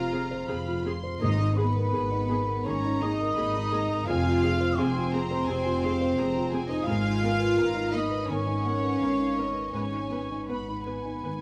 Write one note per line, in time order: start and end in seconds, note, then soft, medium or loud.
0.00 0.40 F1 medium
0.00 1.23 F2 medium
0.00 1.23 C3 soft
0.00 0.68 F4 soft
0.00 0.81 F4 medium
0.00 0.85 F4 medium
0.00 0.13 G#4 soft
0.00 0.31 C5 soft
0.00 0.80 F5 medium
0.00 0.49 A#5 medium
0.00 0.86 F6 medium
0.13 0.21 C4 soft
0.13 0.21 G#4 soft
0.13 0.41 G#4 soft
0.31 0.59 C5 soft
0.49 1.13 F1 medium
0.49 0.57 C4 soft
0.49 0.57 G#4 soft
0.49 0.78 G#4 soft
0.49 0.85 B5 medium
0.68 0.96 F4 soft
0.85 0.93 C4 soft
0.85 0.94 G#4 soft
0.85 1.14 G#4 soft
0.85 1.22 C6 medium
1.03 1.21 C5 soft
1.21 1.85 G#1 medium
1.21 2.61 G#2 medium
1.21 2.26 G#2 medium
1.21 1.29 A#3 medium
1.21 1.55 D#4 medium
1.21 1.29 G#4 soft
1.21 1.55 D#5 medium
1.21 1.55 D#6 medium
1.39 1.68 D#4 soft
1.57 2.65 B3 medium
1.57 1.66 B3 soft
1.57 2.66 B3 medium
1.57 1.86 G#4 soft
1.57 1.66 G#4 medium
1.57 2.66 B4 medium
1.57 2.65 B5 medium
1.75 2.04 A#4 soft
1.93 2.57 G#1 medium
1.93 2.02 B3 soft
1.93 2.22 G#4 soft
1.93 2.01 G#4 soft
2.11 2.40 D#4 soft
2.29 2.37 B3 soft
2.29 2.58 G#4 soft
2.29 2.38 G#4 soft
2.47 2.76 A#4 soft
2.65 3.29 G#1 medium
2.65 2.94 D#3 soft
2.65 2.74 A#3 soft
2.65 3.01 C#4 medium
2.65 2.74 G#4 soft
2.65 3.01 C#5 medium
2.65 3.33 A#5 medium
2.65 3.01 C#6 medium
2.85 3.12 D#4 soft
3.01 3.09 A#3 soft
3.01 4.08 D#4 medium
3.01 3.09 G#4 soft
3.01 3.30 G#4 soft
3.01 4.08 D#5 medium
3.01 4.08 D#6 medium
3.20 3.48 A#4 soft
3.37 3.99 G#1 medium
3.37 3.46 A#3 soft
3.37 3.45 G#4 soft
3.37 3.65 G#4 soft
3.37 3.72 B5 medium
3.56 3.83 D#4 soft
3.72 3.80 A#3 soft
3.72 4.00 G#4 soft
3.72 3.80 G#4 soft
3.72 4.08 A#5 medium
3.90 4.08 A#4 soft
4.06 4.70 F1 medium
4.06 5.45 F2 medium
4.06 4.15 C4 medium
4.06 4.77 F4 medium
4.06 4.79 F4 medium
4.06 4.16 G#4 medium
4.06 4.77 F5 medium
4.06 4.42 G#5 medium
4.06 4.76 F6 medium
4.26 4.54 F4 soft
4.43 4.52 C4 medium
4.43 4.51 G#4 medium
4.43 4.72 G#4 soft
4.43 4.78 F5 medium
4.61 4.88 C5 soft
4.77 5.40 F1 medium
4.77 6.70 C4 medium
4.77 6.66 C4 medium
4.77 4.88 C4 medium
4.77 5.06 G#4 soft
4.77 4.86 G#4 medium
4.77 6.69 C5 medium
4.77 5.14 G#5 medium
4.77 6.47 C6 medium
4.96 5.24 F4 soft
5.13 5.22 C4 medium
5.13 5.41 G#4 soft
5.13 5.22 G#4 medium
5.13 5.48 A#5 medium
5.31 5.58 C5 soft
5.48 6.10 F1 medium
5.48 5.76 C3 soft
5.48 5.56 C4 medium
5.48 5.57 G#4 soft
5.48 5.83 G#5 medium
5.66 5.93 F4 soft
5.83 5.92 C4 medium
5.83 5.92 G#4 soft
5.83 6.11 G#4 soft
5.83 6.17 F5 medium
6.01 6.28 C5 soft
6.18 6.79 F1 medium
6.18 6.27 C4 soft
6.18 6.26 G#4 medium
6.18 6.46 G#4 soft
6.18 6.52 A#5 medium
6.36 6.63 F4 soft
6.52 6.62 C4 medium
6.52 6.80 G#4 soft
6.52 6.62 G#4 soft
6.52 7.57 G#5 medium
6.69 6.87 D#4 medium
6.69 6.88 D#4 medium
6.69 6.87 C5 soft
6.69 6.87 D#5 medium
6.69 6.88 D#6 medium
6.86 7.49 G#1 medium
6.86 8.23 G#2 medium
6.86 6.97 B3 medium
6.86 7.92 F4 medium
6.86 7.90 F4 medium
6.86 6.97 A#4 medium
6.86 7.89 F5 medium
6.86 7.91 F6 medium
7.05 7.33 D#4 soft
7.22 7.31 B3 medium
7.22 7.50 A#4 soft
7.22 7.32 A#4 soft
7.40 7.67 B4 soft
7.56 8.19 G#1 medium
7.56 7.67 B3 soft
7.56 7.84 A#4 soft
7.56 7.66 A#4 soft
7.56 7.93 A#5 medium
7.74 8.02 D#4 soft
7.92 8.02 A#3 soft
7.92 8.02 B3 soft
7.92 8.27 D#4 medium
7.92 8.28 D#4 medium
7.92 8.20 A#4 soft
7.92 8.27 D#5 medium
7.92 8.27 B5 medium
7.92 8.29 D#6 medium
8.10 8.38 B4 soft
8.27 8.91 G#1 medium
8.27 8.56 D#3 soft
8.27 8.37 B3 soft
8.27 9.72 C#4 medium
8.27 9.56 C#4 medium
8.27 8.37 A#4 soft
8.27 9.72 C#5 medium
8.27 8.63 G#5 medium
8.32 9.74 C#6 medium
8.46 8.74 D#4 soft
8.63 8.72 B3 soft
8.63 8.92 A#4 soft
8.63 8.73 A#4 soft
8.63 8.99 F#5 soft
8.82 9.10 B4 soft
8.99 9.64 G#1 soft
8.99 9.09 B3 soft
8.99 9.28 A#4 soft
8.99 9.09 A#4 soft
8.99 9.35 F5 soft
9.18 9.46 D#4 soft
9.35 9.46 B3 soft
9.35 9.65 A#4 soft
9.35 9.47 A#4 soft
9.35 9.72 D#5 soft
9.54 9.72 B4 soft
9.73 10.40 G#1 soft
9.73 11.19 G#2 soft
9.73 9.84 B3 soft
9.73 10.47 C#4 soft
9.73 9.83 B4 soft
9.73 10.47 C#5 soft
9.73 10.40 G#5 soft
9.73 10.48 C#6 medium
9.92 10.22 D#4 soft
10.11 10.19 B3 soft
10.11 10.19 B4 soft
10.11 10.41 B4 soft
10.31 10.60 D#4 soft
10.47 11.14 G#1 soft
10.47 10.57 B3 soft
10.47 11.41 B3 soft
10.47 11.41 B4 soft
10.47 10.57 B4 soft
10.47 10.79 B4 soft
10.47 11.41 B5 soft
10.47 10.83 B5 soft
10.69 10.97 D#4 soft
10.86 10.94 B3 soft
10.86 11.15 B4 soft
10.86 10.94 B4 soft
10.86 11.41 G#5 soft
11.05 11.34 D#4 soft
11.23 11.41 G#1 soft
11.23 11.41 D#3 soft
11.23 11.32 B3 soft
11.23 11.32 B4 soft